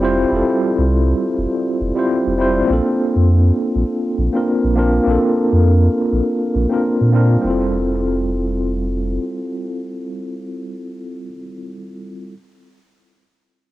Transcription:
Already playing: sub bass F1, tine electric piano C4 E4 F4 C5
0.00 tine electric piano G3 C4 E4 F4
0.04 tine electric piano C5
0.28 sub bass F1, tine electric piano G3 C4 E4
0.34 tine electric piano F4 A4
0.78 sub bass C2
1.38 sub bass F1
1.81 sub bass F1
1.95 tine electric piano G3 C4 E4 F4 C5
2.27 sub bass F1
2.38 tine electric piano G3 C4 E4 F4 C5
2.65 tine electric piano A#3 C4 D4
2.69 sub bass A#1, tine electric piano F4 A4
3.16 sub bass F2
3.75 sub bass A#1
4.18 sub bass A#1
4.32 tine electric piano A#3 C4 D4 F4 A#4
4.64 sub bass A#1
4.75 tine electric piano A#3 C4 D4 F4 A#4
5.03 sub bass A#1, tine electric piano A#3 C4
5.07 tine electric piano D4 F4 A4
5.53 sub bass F2
6.12 sub bass A#1
6.55 sub bass A#1
6.70 tine electric piano A#3 C4 D4 F4 A#4
7.01 sub bass A#2
7.12 tine electric piano A#3 C4 D4 F4 A#4
7.39 tine electric piano G3 C4
7.44 sub bass F1, tine electric piano E4 F4
7.50 tine electric piano A4

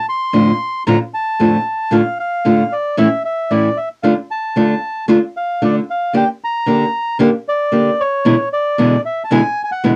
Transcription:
0.09 bandoneon C6
0.33 nylon-string guitar F2 A2 D3 A3 D4 F4
0.87 nylon-string guitar F2 A2 D3 A3 D4 F4, bandoneon A#5
1.14 bandoneon A5
1.39 nylon-string guitar F2 A2 D3 A3 D4 F4
1.91 nylon-string guitar A2 D3 A3 D4 F4, bandoneon F5
2.20 bandoneon F5
2.45 nylon-string guitar A2 D3 A3 D4 F4
2.72 bandoneon D5
2.97 nylon-string guitar A2 E3 A3 C#4 E4, bandoneon E5
3.25 bandoneon E5
3.51 nylon-string guitar A2 E3 A3 C#4 E4, bandoneon D5
3.77 bandoneon E5
4.03 nylon-string guitar D3 A3 D4 F4, bandoneon F5
4.31 bandoneon A5
4.56 nylon-string guitar D3 A3 D4 F4
5.08 nylon-string guitar D3 A3 D4 F4
5.37 bandoneon F5
5.62 nylon-string guitar D3 A3 D4 F4, bandoneon D5
5.90 bandoneon F5
6.13 nylon-string guitar D3 A#3 D4 G4, bandoneon G5
6.44 bandoneon A#5
6.66 nylon-string guitar D3 A#3 D4 G4
7.19 nylon-string guitar D3 A#3 D4 G4
7.48 bandoneon D5
7.72 nylon-string guitar D3 A#3 D4 G4
8.00 bandoneon C#5
8.25 nylon-string guitar E2 B2 D3 G#3 B3 E4
8.53 bandoneon D5
8.78 nylon-string guitar E2 B2 D3 G#3 B3 E4
9.05 bandoneon E5
9.24 bandoneon A5
9.30 nylon-string guitar E2 B2 D3 G#3 B3 E4, bandoneon G#5
9.64 bandoneon G#5
9.71 bandoneon F#5
9.84 nylon-string guitar E2 B2 D3 G#3 B3 E4

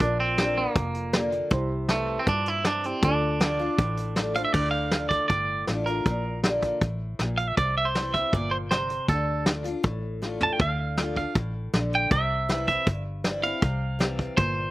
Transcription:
Already playing: clean electric guitar D4
0.00 fingered electric bass A#1, steel-string acoustic guitar A#2, upright piano F4 A#4 D5, kick, closed hi-hat
0.20 clean electric guitar C4
0.38 steel-string acoustic guitar D3 A#3 D4 F4, snare, closed hi-hat
0.58 clean electric guitar A#3
0.75 fingered electric bass F1, steel-string acoustic guitar F2, kick, closed hi-hat
0.94 closed hi-hat
1.13 steel-string acoustic guitar D3 A#3 D4 F4, snare, closed hi-hat
1.32 closed hi-hat
1.51 fingered electric bass C2, steel-string acoustic guitar C3, upright piano E4 G4 C5, kick, closed hi-hat
1.89 steel-string acoustic guitar E3 G3 C4 E4, clean electric guitar A3, snare, closed hi-hat
2.19 clean electric guitar C4
2.27 fingered electric bass G2, steel-string acoustic guitar A#2, clean electric guitar D4, kick, closed hi-hat
2.46 clean electric guitar E4, closed hi-hat
2.65 steel-string acoustic guitar C3, clean electric guitar D4, snare, closed hi-hat
2.84 clean electric guitar C4, upright piano E4 G4 D5, closed hi-hat
3.02 fingered electric bass D2, steel-string acoustic guitar D3, clean electric guitar D4, upright piano F4 A4 D5, kick, closed hi-hat
3.40 steel-string acoustic guitar D3 A3 D4 F4, snare, closed hi-hat
3.59 steel-string acoustic guitar D4 F4
3.78 fingered electric bass A1, steel-string acoustic guitar A2, kick, closed hi-hat
3.97 closed hi-hat
4.16 steel-string acoustic guitar D3 A3 D4 F4, snare, closed hi-hat
4.34 steel-string acoustic guitar D4 F4, upright piano F4 A4 C5, clean electric guitar F5, closed hi-hat
4.45 clean electric guitar E5
4.53 fingered electric bass D2, steel-string acoustic guitar D3, clean electric guitar D5, kick, crash
4.71 clean electric guitar F5
4.91 steel-string acoustic guitar D3 A3 D4 F4, snare, closed hi-hat
5.09 clean electric guitar D5, kick, closed hi-hat
5.28 fingered electric bass G1, steel-string acoustic guitar A2, clean electric guitar D5, kick, closed hi-hat
5.67 fingered electric bass A1, steel-string acoustic guitar D3 A3 D4 F4, snare, closed hi-hat
5.86 steel-string acoustic guitar D4 F4, clean electric guitar A#4, closed hi-hat
6.05 fingered electric bass A#1, steel-string acoustic guitar A#2, kick, closed hi-hat
6.43 steel-string acoustic guitar D3 A#3 D4 F4, snare, closed hi-hat
6.62 kick, closed hi-hat
6.81 fingered electric bass A1, kick, closed hi-hat
7.19 fingered electric bass A#1, steel-string acoustic guitar A#2, snare, closed hi-hat
7.38 clean electric guitar F5, closed hi-hat
7.48 clean electric guitar E5
7.57 fingered electric bass C2, steel-string acoustic guitar C3, clean electric guitar D5, kick, closed hi-hat
7.78 clean electric guitar E5
7.85 clean electric guitar C5
7.95 steel-string acoustic guitar E3 G3 C4 E4, snare, closed hi-hat
8.14 steel-string acoustic guitar C4 E4, clean electric guitar E5, kick, closed hi-hat
8.33 fingered electric bass G1, steel-string acoustic guitar A#2, clean electric guitar D5, kick, closed hi-hat
8.51 clean electric guitar C5
8.71 steel-string acoustic guitar C3, clean electric guitar C5, snare, closed hi-hat
8.90 closed hi-hat
9.08 fingered electric bass D2, steel-string acoustic guitar D3, clean electric guitar A4, kick, closed hi-hat
9.46 steel-string acoustic guitar D3 A3 D4 F4, snare, closed hi-hat
9.64 steel-string acoustic guitar D4 F4, closed hi-hat
9.84 fingered electric bass A1, steel-string acoustic guitar A2, kick, closed hi-hat
10.22 steel-string acoustic guitar D3 A3 D4 F4, snare
10.41 clean electric guitar A5, floor tom
10.53 clean electric guitar G5
10.59 fingered electric bass D2, steel-string acoustic guitar D3, clean electric guitar F5, kick, closed hi-hat
10.97 steel-string acoustic guitar D3 A3 D4 F4, snare, closed hi-hat
11.16 steel-string acoustic guitar D4 F4, clean electric guitar F5, kick, closed hi-hat
11.35 fingered electric bass A1, steel-string acoustic guitar A2, kick, closed hi-hat
11.74 fingered electric bass A#1, steel-string acoustic guitar D3, snare, closed hi-hat
11.92 clean electric guitar G5, closed hi-hat
12.11 fingered electric bass C2, steel-string acoustic guitar C3, clean electric guitar E5, kick, closed hi-hat
12.49 steel-string acoustic guitar E3 G3 C4 E4, snare, closed hi-hat
12.67 steel-string acoustic guitar C4 E4, clean electric guitar E5, kick, closed hi-hat
12.87 fingered electric bass G1, steel-string acoustic guitar G2, kick, closed hi-hat
13.24 steel-string acoustic guitar E3 G3 C4 E4, snare, closed hi-hat
13.43 steel-string acoustic guitar C4 E4, clean electric guitar F5, closed hi-hat
13.62 fingered electric bass C2, steel-string acoustic guitar C3, kick, closed hi-hat
13.99 steel-string acoustic guitar E3 G3 C4, snare, closed hi-hat
14.19 kick, closed hi-hat
14.37 fingered electric bass G1, steel-string acoustic guitar A#2, clean electric guitar C5, kick, closed hi-hat

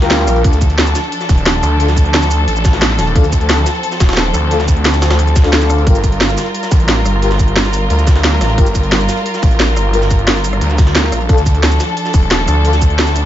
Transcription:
Already playing: string section G3 G4 A#4
0.02 brass ensemble F4 G4 A#4, snare, closed hi-hat
0.11 detuned saw bass D2, snare, closed hi-hat
0.19 snare
0.27 detuned saw bass A#1, cross-stick, closed hi-hat, open hi-hat, shaker
0.36 closed hi-hat
0.44 detuned saw bass D2, string section F3 D4 A4, brass ensemble D4 F4 A4, kick, closed hi-hat
0.53 closed hi-hat, shaker
0.61 kick, closed hi-hat, shaker
0.70 closed hi-hat
0.78 snare, closed hi-hat
0.87 shaker
0.95 snare, closed hi-hat, open hi-hat, shaker
1.04 closed hi-hat
1.12 closed hi-hat
1.21 snare, shaker
1.29 detuned saw bass D#1, kick, closed hi-hat, open hi-hat, shaker
1.38 closed hi-hat
1.46 snare, closed hi-hat
1.63 detuned saw bass D2, cross-stick, closed hi-hat, open hi-hat, shaker
1.80 brass ensemble D4 F4 A4, closed hi-hat
1.88 snare, shaker
1.97 kick, closed hi-hat, shaker
2.05 closed hi-hat
2.14 snare, closed hi-hat
2.22 snare, shaker
2.31 closed hi-hat, open hi-hat, shaker
2.48 detuned saw bass A1, closed hi-hat
2.56 shaker
2.65 kick, snare, closed hi-hat, shaker
2.73 snare, closed hi-hat
2.82 snare, closed hi-hat
2.90 snare
2.99 detuned saw bass D#1, cross-stick, snare, closed hi-hat, open hi-hat, shaker
3.07 closed hi-hat
3.16 detuned saw bass D2, string section C4, brass ensemble D4 F4 A4, kick, closed hi-hat
3.24 closed hi-hat, shaker
3.33 kick, closed hi-hat, shaker
3.41 closed hi-hat
3.49 snare, closed hi-hat
3.58 shaker
3.66 snare, closed hi-hat, open hi-hat, shaker
3.75 closed hi-hat
3.83 closed hi-hat
3.92 snare, shaker
4.00 detuned saw bass D#1, kick, snare, closed hi-hat, shaker
4.09 snare, closed hi-hat
4.13 snare, closed hi-hat
4.17 snare, closed hi-hat
4.34 detuned saw bass D2, cross-stick, closed hi-hat, open hi-hat, shaker
4.51 brass ensemble D4 F4 A4, closed hi-hat
4.60 snare, shaker
4.68 kick, closed hi-hat, shaker
4.77 closed hi-hat
4.85 snare, closed hi-hat
4.94 snare, shaker
5.02 snare, closed hi-hat, open hi-hat, shaker
5.10 cross-stick, snare, closed hi-hat
5.19 detuned saw bass D2, closed hi-hat
5.27 closed hi-hat, shaker
5.36 kick, snare, closed hi-hat, shaker
5.44 brass ensemble D4 F4 A4, snare, closed hi-hat
5.53 snare, closed hi-hat
5.61 snare, shaker
5.70 cross-stick, closed hi-hat, open hi-hat, shaker
5.78 closed hi-hat
5.87 detuned saw bass G1, string section G3 F4 A#4, brass ensemble F4 G4 A#4, kick, closed hi-hat
5.95 closed hi-hat, shaker
6.04 kick, closed hi-hat, shaker
6.12 closed hi-hat
6.21 snare, closed hi-hat
6.29 shaker
6.38 snare, closed hi-hat, open hi-hat, shaker
6.46 closed hi-hat
6.55 closed hi-hat
6.63 snare, shaker
6.72 detuned saw bass A1, kick, closed hi-hat, open hi-hat, shaker
6.80 closed hi-hat
6.88 snare, closed hi-hat
7.05 detuned saw bass G1, cross-stick, closed hi-hat, open hi-hat, shaker
7.22 brass ensemble F4 G4 A#4, closed hi-hat
7.31 snare, shaker
7.39 kick, closed hi-hat, shaker
7.48 closed hi-hat
7.56 snare, closed hi-hat
7.65 snare, shaker
7.73 closed hi-hat, open hi-hat, shaker
7.90 detuned saw bass D2, closed hi-hat
7.99 shaker
8.07 kick, snare, closed hi-hat, shaker
8.16 snare, closed hi-hat
8.24 snare, closed hi-hat
8.33 snare
8.41 detuned saw bass A1, cross-stick, snare, closed hi-hat, open hi-hat, shaker
8.50 closed hi-hat
8.58 detuned saw bass G1, brass ensemble F4 G4 A#4, kick, closed hi-hat
8.66 closed hi-hat, shaker
8.75 kick, closed hi-hat, shaker
8.83 closed hi-hat
8.92 snare, closed hi-hat
9.00 shaker
9.09 snare, closed hi-hat, open hi-hat, shaker
9.17 closed hi-hat
9.26 closed hi-hat
9.34 snare, shaker
9.43 detuned saw bass A1, kick, closed hi-hat, open hi-hat, shaker
9.51 closed hi-hat
9.60 snare, closed hi-hat
9.77 detuned saw bass G1, cross-stick, closed hi-hat, open hi-hat, shaker
9.94 brass ensemble F4 G4 A#4, closed hi-hat
10.02 snare, shaker
10.11 kick, closed hi-hat, shaker
10.19 closed hi-hat
10.27 snare, closed hi-hat
10.36 snare, shaker
10.44 closed hi-hat, open hi-hat, shaker
10.53 cross-stick, closed hi-hat
10.61 detuned saw bass D2, closed hi-hat
10.70 shaker
10.78 kick, snare, closed hi-hat, shaker
10.87 snare, closed hi-hat
10.95 detuned saw bass D2, snare, closed hi-hat
11.04 snare
11.12 detuned saw bass A#1, cross-stick, closed hi-hat, open hi-hat, shaker
11.21 closed hi-hat
11.29 detuned saw bass D2, string section F3 D4 A4, brass ensemble D4 F4 A4, kick, closed hi-hat
11.38 closed hi-hat, shaker
11.46 kick, closed hi-hat, shaker
11.55 closed hi-hat
11.63 snare, closed hi-hat
11.72 shaker
11.80 snare, closed hi-hat, open hi-hat, shaker
11.89 closed hi-hat
11.97 closed hi-hat
12.05 snare, shaker
12.14 detuned saw bass D#1, kick, closed hi-hat, open hi-hat, shaker
12.22 closed hi-hat
12.31 snare, closed hi-hat
12.48 detuned saw bass D2, cross-stick, closed hi-hat, open hi-hat, shaker
12.65 brass ensemble D4 F4 A4, closed hi-hat
12.73 snare, shaker
12.82 kick, closed hi-hat, shaker
12.90 closed hi-hat
12.99 snare, closed hi-hat
13.07 snare, shaker
13.16 closed hi-hat, open hi-hat, shaker

